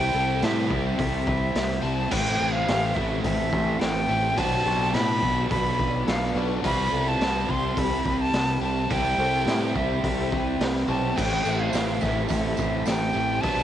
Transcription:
Already playing: C2 C3 G3 C4 E4 G4 B4 C5 G5 B5
0.14 C2 A4
0.40 A2 C3 G3 C4 G4 E5, snare, open hi-hat
0.68 C2 G3 C4, kick
0.97 C2 C3 G3 C4 A4 E5, kick, open hi-hat
1.27 B4, kick
1.55 C2 G4, snare, open hi-hat
1.70 snare
1.82 C2 C3 G3 C4 E4 A5
2.09 A1 A2 E3 A3 C4 E4 G4 B4 G5 A5, kick, crash
2.39 A1 A4
2.52 F5
2.66 A1 A2 E3 A3 G4, snare, open hi-hat
2.95 A1 E3 A3 E5, kick
3.23 A1 A2 E3 A3 A4 E5, kick, open hi-hat
3.52 A1 C5, kick
3.80 A1 A4 G5, snare, open hi-hat
4.08 A1 A2 E3 A3 C4 E4
4.35 B1 B2 F#3 B3 F4 B4 D5 A5, kick, open hi-hat
4.39 D4
4.65 B1 A4
4.93 A2 B2 F#3 B3 G5 B5, snare, open hi-hat
5.21 B1 F#3 B3, kick
5.50 B1 B2 F#3 B3 A4 B5, kick, open hi-hat
5.78 B4, kick
6.07 B1 A4 F5, snare, open hi-hat
6.23 snare
6.35 B1 B2 F#3 B3 D4
6.62 C2 C3 G3 C4 E4 G4 B4 C5 G5 B5, kick, open hi-hat
6.92 C2 A4
7.08 A5
7.19 C2 C3 G3 C4 G4, snare, open hi-hat
7.47 C2 G3 C4 C6, kick
7.76 C2 C3 G3 C4 A4 B5, kick, open hi-hat
8.05 C2 B4, kick
8.21 A5
8.33 C2 G4, snare, open hi-hat
8.61 C2 C3 G3 C4 E4 A5
8.90 C2 C3 G3 C4 E4 B4 G5, kick, open hi-hat
9.18 C2 A4
9.46 A2 C3 G3 C4 G4, snare, open hi-hat
9.74 C2 G3 C4 E5, kick
10.03 C2 C3 G3 C4 A4, kick, open hi-hat
10.32 B4, kick
10.60 C2 G4, snare, open hi-hat
10.76 snare
10.87 B1 C3 G3 C4 E4 A5
11.15 A1 A2 E3 A3 C4 G4 B4 G5 A5, kick, crash
11.19 E4
11.45 A1 A4, tambourine
11.60 F5
11.71 A1 A2 E3 A3 G4, snare, open hi-hat, tambourine
12.00 A1 E3 A3 E5, kick, snare, tambourine
12.28 A1 A2 E3 A3 A4 E5, kick, open hi-hat, tambourine
12.57 A1 C5, kick, tambourine
12.85 A1 A4 G5, snare, open hi-hat, tambourine
13.02 snare
13.13 A1 A2 A3 C4 E4
13.17 E3
13.41 B1 B2 F#3 B3 D4 B4 A5, kick, open hi-hat

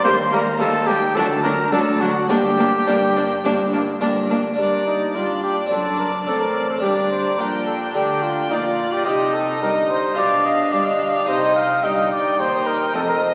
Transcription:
0.04 D#2 G3 A#3 C5 C6
0.32 G3 A#3 A#4 A#5
0.59 D#2 G3 A#3 D#4 G4 A4 A5
0.87 G3 A#3 G4 G5
1.16 D2 F#3 D4 A4 A5
1.43 F#3 D4 A#4 A#5
1.71 D2 F#3 D4 F#4 A4 A5
2.01 F#3 D4 F#4 F#5
2.29 G1 G2 A#3 D4 G4 G5
2.58 A#3 D4
2.87 G1 G2 A#3 D4 G4 A#4
3.16 A#3 D4
3.44 G1 G2 A#3 D4
3.73 A#3 D4
4.01 G1 G2 A#3 D4 G4 A#4
4.30 A#3 D4
4.54 A#3 D4
4.58 G1 G2 A#3 D4 D5 A#5
4.87 D#4
5.14 G2 G3 D4 F4 D5 G5
5.43 G4
5.66 C4 D4
5.71 F#1 F#2 D4 A4 D5 A5
5.99 A#4
6.27 A1 A2 C4 A4
6.40 A#4
6.69 A4
6.78 A#3 D4 G4
6.83 G1 G2 D4 D5 A#5
7.10 C5
7.39 A#1 A#2 D4 A#4 G5
7.66 A4
7.94 D2 D3 G4 G5 A#5
8.23 F4
8.50 A#1 A#2 D#4 F4 D5 A#5
8.64 F4
8.93 G4
9.03 C2 C3 D#4 G4 D#5 G5
9.34 A4
9.62 G1 G2 D#4 A#4
9.90 C5
10.14 B1 B2 D4 F4 G4 D5 F5 G5
10.45 D#5
10.72 G1 G2 D5 F5
10.86 D#5
11.14 D5
11.25 C2 C3 D#4 G4 C5 D#5
11.56 F5
11.83 G1 G2 D#5 G5 A#5
12.12 D5
12.39 D#2 D#4 C5 G5
12.67 A#4
12.94 F1 F2 C4 A4 D#5
13.09 A#4

